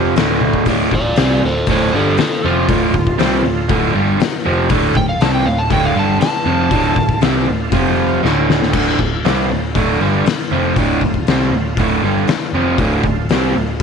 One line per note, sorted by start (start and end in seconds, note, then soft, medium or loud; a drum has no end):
0.00 0.13 F1 medium
0.00 0.14 F2 medium
0.00 0.15 C3 medium
0.00 0.15 F3 loud
0.00 0.16 F4 medium
0.00 0.17 C5 medium
0.00 0.16 F5 medium
0.16 0.63 D1 medium
0.16 0.66 D2 medium
0.16 0.66 A2 loud
0.16 0.66 D3 medium
0.16 4.17 D4 medium
0.16 4.17 F4 medium
0.16 4.17 A4 medium
0.16 4.17 F5 medium
0.16 snare loud
0.16 open hi-hat medium
0.41 high tom medium
0.54 kick medium
0.66 0.90 D1 loud
0.66 0.91 D2 medium
0.66 0.91 A2 medium
0.66 0.93 D3 loud
0.66 kick loud
0.66 open hi-hat medium
0.91 1.15 D1 medium
0.91 1.12 D2 medium
0.91 1.13 A2 medium
0.91 1.18 F4 medium
0.91 1.18 D5 loud
0.91 kick medium
1.16 1.41 C2 medium
1.16 1.42 C3 medium
1.16 1.43 G3 loud
1.16 1.43 C4 loud
1.16 1.42 F4 medium
1.16 1.43 D5 medium
1.16 snare loud
1.16 open hi-hat medium
1.42 1.66 D1 medium
1.42 1.64 D2 medium
1.42 1.64 A2 medium
1.42 1.68 A4 medium
1.46 1.69 C5 medium
1.66 1.91 D1 loud
1.66 1.93 D2 loud
1.66 1.93 A2 loud
1.66 1.93 D3 medium
1.66 1.93 A4 medium
1.66 kick loud
1.66 open hi-hat medium
1.71 1.94 C5 medium
1.93 2.17 G1 loud
1.93 2.18 G2 medium
1.93 2.18 D3 medium
1.93 2.19 G3 medium
1.93 2.18 F4 medium
1.93 2.19 A4 medium
2.17 2.43 F4 medium
2.17 2.44 A4 medium
2.17 muted overdriven electric guitar stroke medium
2.17 muted picked electric bass stroke soft
2.17 snare loud
2.17 open hi-hat medium
2.44 2.68 F1 medium
2.44 2.68 F2 medium
2.44 2.69 C3 loud
2.44 2.69 F3 medium
2.44 3.92 F4 medium
2.68 2.92 D1 loud
2.68 2.93 D2 medium
2.68 2.94 A2 medium
2.68 2.94 D3 loud
2.68 kick loud
2.68 open hi-hat medium
2.94 3.18 D1 medium
2.94 3.15 D2 medium
2.94 3.15 A2 medium
2.94 kick medium
3.07 kick medium
3.19 3.43 C2 medium
3.19 3.44 C3 medium
3.19 3.44 G3 loud
3.19 3.44 C4 loud
3.19 snare loud
3.19 open hi-hat medium
3.44 3.68 D1 medium
3.44 3.65 D2 medium
3.44 3.65 A2 medium
3.69 3.93 D1 medium
3.69 3.94 D2 medium
3.69 3.94 A2 loud
3.69 3.93 D3 loud
3.69 kick loud
3.69 open hi-hat medium
3.94 4.18 G1 loud
3.94 4.19 G2 medium
3.94 4.19 D3 medium
3.94 4.20 G3 loud
4.20 4.38 D#4 medium
4.20 4.38 F#4 medium
4.20 4.37 A#4 medium
4.20 4.38 F#5 medium
4.20 muted overdriven electric guitar stroke medium
4.20 muted picked electric bass stroke soft
4.20 snare loud
4.20 open hi-hat medium
4.39 7.71 D4 medium
4.39 7.71 F4 medium
4.39 7.71 A4 medium
4.39 7.71 F5 medium
4.45 4.69 F1 loud
4.45 4.70 F2 medium
4.45 4.70 C3 loud
4.45 4.70 F3 loud
4.69 4.94 D1 loud
4.69 4.95 D2 medium
4.69 4.95 A2 loud
4.69 4.96 D3 loud
4.69 kick loud
4.69 open hi-hat medium
4.95 5.19 D1 medium
4.95 5.16 D2 medium
4.95 5.16 A2 medium
4.95 5.09 G5 loud
4.95 kick medium
5.09 5.21 F5 loud
5.20 5.45 C2 medium
5.20 5.46 C3 medium
5.20 5.46 G3 loud
5.20 5.47 C4 loud
5.20 5.33 A5 medium
5.20 snare loud
5.20 open hi-hat medium
5.34 5.46 G5 medium
5.46 5.70 D1 medium
5.46 5.67 D2 medium
5.46 5.67 A2 medium
5.46 5.58 F5 medium
5.58 5.71 A5 loud
5.70 5.94 D1 medium
5.70 5.95 D2 loud
5.70 5.95 A2 medium
5.70 5.94 D3 loud
5.70 5.84 G5 loud
5.70 kick loud
5.70 open hi-hat medium
5.85 5.97 F5 medium
5.95 6.19 G1 medium
5.95 6.21 G2 loud
5.95 6.21 D3 medium
5.95 6.21 G3 medium
5.95 6.21 A5 medium
6.21 7.20 A5 loud
6.21 muted overdriven electric guitar stroke medium
6.21 muted picked electric bass stroke soft
6.21 snare loud
6.21 open hi-hat medium
6.45 6.70 F1 loud
6.45 6.71 F2 medium
6.45 6.71 C3 medium
6.45 6.71 F3 loud
6.71 6.95 D1 loud
6.71 6.95 D2 loud
6.71 6.96 A2 loud
6.71 6.97 D3 loud
6.71 kick loud
6.71 open hi-hat medium
6.96 7.20 D1 medium
6.96 7.17 D2 medium
6.96 7.17 A2 medium
6.96 kick medium
7.09 kick medium
7.21 7.46 C2 loud
7.21 7.47 C3 medium
7.21 7.47 G3 loud
7.21 7.47 C4 loud
7.21 snare loud
7.21 open hi-hat medium
7.48 7.71 D1 medium
7.48 7.68 D2 medium
7.48 7.68 A2 medium
7.72 8.19 F1 medium
7.72 8.22 F2 medium
7.72 8.23 C3 loud
7.72 8.23 F3 loud
7.72 8.23 F4 medium
7.72 8.23 C5 medium
7.72 8.23 F5 medium
7.72 kick loud
7.72 open hi-hat medium
8.23 8.71 D1 medium
8.23 8.72 D2 medium
8.23 8.72 A2 loud
8.23 8.73 D3 medium
8.23 8.74 D4 medium
8.23 8.73 F4 medium
8.23 8.74 A4 medium
8.23 8.74 F5 medium
8.23 snare medium
8.50 snare medium
8.62 snare medium
8.73 8.97 D1 medium
8.73 8.98 D2 loud
8.73 8.98 A2 medium
8.73 8.98 D3 loud
8.73 12.75 D4 medium
8.73 12.75 F4 medium
8.73 12.76 A4 medium
8.73 12.75 F5 medium
8.73 kick loud
8.73 crash loud
8.99 9.23 D1 medium
8.99 9.20 D2 medium
8.99 9.20 A2 medium
8.99 kick medium
9.25 9.49 C2 medium
9.25 9.49 C3 medium
9.25 9.50 G3 loud
9.25 9.50 C4 medium
9.25 snare loud
9.25 open hi-hat medium
9.51 9.74 D1 medium
9.51 9.71 D2 medium
9.51 9.71 A2 medium
9.75 9.98 D1 medium
9.75 10.00 D2 medium
9.75 10.00 A2 medium
9.75 10.01 D3 loud
9.75 kick loud
9.75 open hi-hat medium
10.01 10.24 G1 medium
10.01 10.25 G2 medium
10.01 10.26 D3 medium
10.01 10.26 G3 medium
10.26 muted picked electric bass stroke soft
10.26 muted overdriven electric guitar stroke medium
10.26 snare loud
10.26 open hi-hat medium
10.51 10.75 F1 medium
10.51 10.76 F2 medium
10.51 10.76 C3 medium
10.51 10.76 F3 medium
10.76 11.00 D1 loud
10.76 11.01 D2 medium
10.76 11.02 A2 medium
10.76 11.02 D3 loud
10.76 kick loud
10.76 open hi-hat medium
11.01 11.25 D1 medium
11.01 11.22 D2 medium
11.01 11.23 A2 medium
11.01 kick medium
11.14 kick medium
11.26 11.50 C2 medium
11.26 11.52 C3 medium
11.26 11.53 G3 loud
11.26 11.53 C4 loud
11.26 snare loud
11.26 open hi-hat medium
11.51 11.75 D1 medium
11.51 11.73 D2 medium
11.51 11.73 A2 medium
11.77 12.01 D1 medium
11.77 12.03 D2 medium
11.77 12.03 A2 medium
11.77 12.03 D3 loud
11.77 kick loud
11.77 open hi-hat medium
12.02 12.26 G1 medium
12.02 12.28 G2 medium
12.02 12.28 D3 loud
12.02 12.29 G3 loud
12.27 muted overdriven electric guitar stroke medium
12.27 snare loud
12.27 open hi-hat medium
12.53 12.77 F1 medium
12.53 12.79 F2 medium
12.53 12.79 C3 medium
12.53 12.79 F3 loud
12.78 13.02 D1 loud
12.78 13.04 D2 medium
12.78 13.04 A2 medium
12.78 13.04 D3 loud
12.78 13.82 D4 medium
12.78 13.82 F4 medium
12.78 13.82 A4 medium
12.78 13.82 F5 medium
12.78 kick loud
12.78 open hi-hat medium
13.04 13.28 D1 medium
13.04 13.25 D2 medium
13.04 13.26 A2 medium
13.04 kick medium
13.29 13.53 C2 medium
13.29 13.55 C3 medium
13.29 13.55 G3 loud
13.29 13.55 C4 medium
13.29 snare loud
13.29 open hi-hat medium
13.56 13.79 D1 medium
13.56 13.76 D2 medium
13.56 13.76 A2 medium